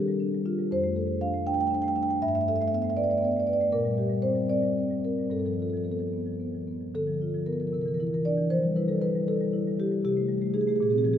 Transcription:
Already playing: D#3 D4 G4
0.08 G3
0.20 D4
0.34 G3
0.45 D4 F4
0.59 G3
0.71 F2 C5
0.84 A3
0.96 A4
1.08 A3
1.21 D4 F5
1.34 A3
1.46 D4 G5
1.54 G5
1.59 A3 G5
1.67 D4 G5
1.74 G5
1.82 A3 G5
1.88 G5
1.96 D4 G5
2.03 G5
2.09 A3 G5
2.22 G2 E5
2.28 E5
2.35 A3 E5
2.41 E5
2.48 A4 E5
2.56 E5
2.61 A3 E5
2.68 E5
2.72 B3 E5
2.82 A3 E5
2.90 E5
2.97 B4 D5
3.04 D5
3.10 A3 D5
3.18 D5
3.22 B3 D5
3.32 D5
3.37 A3 D5
3.47 B4 D5
3.53 D5
3.61 A3 D5
3.72 A#2 A#4
3.85 G3
3.98 G4
4.09 G3
4.22 C4 C5
4.36 G3
4.49 C4 D5
4.62 G3
4.78 C4
4.91 G3
5.05 C4 A#4
5.19 G3
5.30 G2 A4
5.39 A4
5.46 F3 A4
5.54 A4
5.60 F4 A4
5.70 F3 A4
5.77 A4
5.84 B3 A4
5.92 A4
5.99 F3 A4
6.13 B3
6.26 F3
6.40 B3
6.55 F3
6.68 B3
6.81 F3
6.95 D3 A4
7.07 F3
7.22 F4
7.34 F3
7.46 B3 A#4
7.53 A#4
7.60 F3 A#4
7.67 A#4
7.73 C3 A#4
7.81 A#4
7.86 E3 A#4
7.94 A#4
8.00 E4 A#4
8.07 A#4
8.13 E3 A#4
8.25 D4 D5
8.38 E3
8.50 F3 C5
8.63 G3
8.76 E4 B4
8.88 G3 A4
9.01 E4 B4
9.15 G3
9.28 E4 A4
9.41 G3
9.53 E4
9.68 G3
9.80 E4 G4
9.92 G3
10.05 C3 G4
10.17 A3
10.29 G3
10.42 A3
10.54 D#4 G#4
10.61 G#4
10.67 A3 G#4
10.76 G#4
10.81 A#2 G#4
10.90 C4 G#4
10.98 G#4
11.04 F3 G#4
11.13 G#4

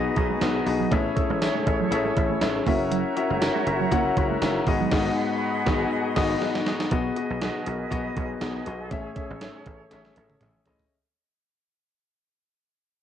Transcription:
Already playing: B2 B3 D#4 F#4 G#4 B4 D#5 F#5 B5
0.16 B1 B3 D#4 F#4 G#4 D#5, muted clean electric guitar stroke, kick, closed hi-hat
0.30 G#3
0.41 B1 G#3 B3 D#4 F#4 G#4 D#5, snare, closed hi-hat, tambourine
0.66 B1 B3 D#4 F#4 G#4 D#5, muted clean electric guitar stroke, open hi-hat
0.80 F#3
0.91 A1 A2 A3 C#4 E4 G#4 A4 C#5 E5, kick, closed hi-hat
1.16 C#4 E4 G#4 A4 E5, muted clean electric guitar stroke, kick, closed hi-hat
1.30 A1 G#3
1.41 C#4 E4 G#4 A4 E5, snare, closed hi-hat, tambourine
1.55 G#3
1.66 A1 C#4 E4 G#4 A4 E5, muted clean electric guitar stroke, kick, closed hi-hat
1.80 F#3
1.91 A1 C#4 E4 G#4 A4 E5, closed hi-hat
2.05 G#3
2.16 A1 C#4 E4 G#4 A4 E5, muted clean electric guitar stroke, kick, closed hi-hat
2.30 A3
2.41 A1 C#4 E4 G#4 A4 E5, snare, closed hi-hat, tambourine
2.66 F#1 A#3 C#4 E4 F#4 A#4 C#5 E5 A#5, kick, open hi-hat
2.91 F#3, closed hi-hat
3.16 C#4 E4 F#4 A#4 E5, muted clean electric guitar stroke, closed hi-hat
3.30 F#1 G#3
3.41 C#4 E4 F#4 A#4 E5, snare, closed hi-hat, tambourine
3.55 G#3
3.66 F#1 C#4 E4 F#4 A#4 E5, muted clean electric guitar stroke, closed hi-hat
3.80 F#3
3.91 F#1 A#3 C#4 E4 F#4 A#4 F#5, kick, closed hi-hat
4.16 F#1 C#4 E4 F#4 A#4 E5, muted clean electric guitar stroke, kick, closed hi-hat
4.30 G#3
4.41 F#1 G#3 C#4 E4 F#4 A#4 E5, snare, closed hi-hat, tambourine
4.67 G#1 G#2 B3 D#4 F#4 G#4 D#5 F#5 B5, muted clean electric guitar stroke, kick, open hi-hat
4.80 F#3
4.92 G#1 G#2 B3 D#4 F#4 G#4 D#5, kick, snare, crash
5.66 G#1 B3 D#4 F#4 G#4 D#5, kick, snare
6.16 G#1 B3 D#4 F#4 G#4 D#5, kick, snare, crash
6.42 snare
6.55 snare
6.66 snare
6.80 snare
6.91 B1 B2 B3 F#4 G#4 B4 D#5, kick, closed hi-hat
7.16 B3 F#4 G#4 D#5, closed hi-hat
7.30 B1
7.41 B3 F#4 G#4 D#5, snare, closed hi-hat
7.66 B1 B3 F#4 G#4 A#4, closed hi-hat
7.90 B1 B3 F#4 G#4 D#5, kick, closed hi-hat
8.15 B1 B3 F#4 G#4 D#5, kick, closed hi-hat
8.41 B1 B3 F#4 G#4 D#5, snare, closed hi-hat
8.66 B1 B3 F#4 G#4 D#5, closed hi-hat
8.91 A1 A2 C#4 G#4 A4 C#5 E5, kick, closed hi-hat
9.16 C#4 G#4 A4 E5, kick, closed hi-hat
9.30 A1
9.41 C#4 G#4 A4 E5, snare, closed hi-hat
9.66 A1 C#4 G#4 A4 E5, kick, closed hi-hat
9.91 A1 C#4 G#4 A4 E5, snare, closed hi-hat
10.05 snare
10.16 A1 C#4 G#4 A4 E5, closed hi-hat
10.30 high tom
10.41 A1 C#4 G#4 A4 E5, closed hi-hat, mid tom
10.65 A1 C#4 G#4 A4 D#5, closed hi-hat, floor tom
10.79 floor tom

